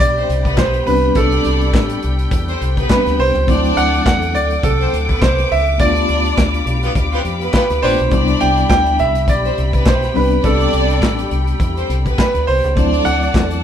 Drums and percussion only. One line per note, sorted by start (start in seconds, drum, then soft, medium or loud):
0.00 kick loud
0.00 closed hi-hat medium
0.17 closed hi-hat soft
0.30 closed hi-hat medium
0.45 kick medium
0.45 closed hi-hat medium
0.58 kick loud
0.58 snare loud
0.58 clap loud
0.73 closed hi-hat soft
0.87 open hi-hat medium
1.02 closed hi-hat soft
1.15 kick loud
1.15 closed hi-hat medium
1.32 closed hi-hat soft
1.44 closed hi-hat medium
1.61 closed hi-hat soft
1.74 kick loud
1.74 snare loud
1.74 clap medium
1.90 closed hi-hat medium
2.03 closed hi-hat medium
2.19 closed hi-hat soft
2.31 kick loud
2.31 closed hi-hat medium
2.48 closed hi-hat soft
2.62 closed hi-hat medium
2.77 kick medium
2.77 closed hi-hat soft
2.90 kick loud
2.90 snare loud
2.90 clap loud
3.06 snare soft
3.06 closed hi-hat soft
3.19 open hi-hat medium
3.35 closed hi-hat medium
3.48 kick loud
3.48 closed hi-hat medium
3.64 closed hi-hat soft
3.77 closed hi-hat medium
3.94 closed hi-hat soft
4.06 kick loud
4.06 snare loud
4.06 clap loud
4.22 closed hi-hat medium
4.35 closed hi-hat medium
4.51 closed hi-hat soft
4.63 kick loud
4.63 closed hi-hat medium
4.81 closed hi-hat soft
4.94 closed hi-hat medium
5.09 kick medium
5.09 closed hi-hat soft
5.22 kick loud
5.22 snare loud
5.22 clap loud
5.38 snare soft
5.38 closed hi-hat medium
5.52 open hi-hat medium
5.67 closed hi-hat soft
5.80 kick loud
5.80 closed hi-hat medium
5.96 closed hi-hat soft
6.09 closed hi-hat medium
6.26 closed hi-hat soft
6.38 kick loud
6.38 snare loud
6.38 clap medium
6.54 closed hi-hat medium
6.67 closed hi-hat medium
6.83 closed hi-hat medium
6.95 kick loud
6.95 closed hi-hat medium
7.13 closed hi-hat soft
7.25 closed hi-hat medium
7.41 closed hi-hat soft
7.54 kick loud
7.54 snare loud
7.54 clap medium
7.70 snare soft
7.70 closed hi-hat soft
7.83 open hi-hat medium
7.99 closed hi-hat soft
8.11 kick loud
8.11 closed hi-hat medium
8.28 closed hi-hat soft
8.41 closed hi-hat medium
8.57 closed hi-hat soft
8.70 kick loud
8.70 snare loud
8.70 clap medium
8.86 closed hi-hat soft
8.99 closed hi-hat medium
9.15 closed hi-hat medium
9.28 kick loud
9.28 closed hi-hat medium
9.45 closed hi-hat soft
9.58 closed hi-hat medium
9.73 kick medium
9.73 closed hi-hat medium
9.86 kick loud
9.86 snare loud
9.86 clap medium
10.03 snare soft
10.03 closed hi-hat soft
10.15 open hi-hat medium
10.32 closed hi-hat soft
10.44 kick loud
10.44 closed hi-hat medium
10.60 closed hi-hat soft
10.73 closed hi-hat medium
10.90 closed hi-hat soft
11.02 kick loud
11.02 snare loud
11.02 clap medium
11.19 closed hi-hat medium
11.31 closed hi-hat medium
11.47 closed hi-hat medium
11.60 kick loud
11.60 closed hi-hat medium
11.77 closed hi-hat soft
11.90 closed hi-hat medium
12.06 kick medium
12.06 closed hi-hat soft
12.18 kick loud
12.18 snare loud
12.18 clap loud
12.35 closed hi-hat soft
12.48 open hi-hat medium
12.64 closed hi-hat soft
12.77 kick loud
12.77 closed hi-hat medium
12.94 closed hi-hat soft
13.06 closed hi-hat medium
13.23 closed hi-hat medium
13.34 kick loud
13.34 snare loud
13.34 clap medium
13.51 closed hi-hat medium